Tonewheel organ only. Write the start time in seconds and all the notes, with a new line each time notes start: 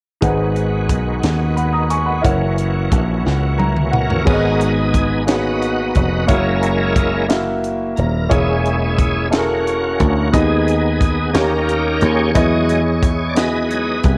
0.22 D#3 G#3 B3 F#4
2.24 E3 A#3 C#4
3.94 A#4
4.27 B3 D#4 F#4 G#4 A#4
5.27 B3 D#4 F#4
6.30 G#3 A#3 C#4 E4 A#4
7.96 A#4
8.31 G#3 C#4 E4 G#4
9.32 A#3 C#4 F#4
10.33 G#3 B3 D#4 G#4
11.33 D#3 A#3 C#4 G4 A#4
12.04 G#4 C#5
12.37 F#3 G#3 D#5
13.29 D5
13.37 G#4 B4 D#5
13.69 F#3 G#3 D#4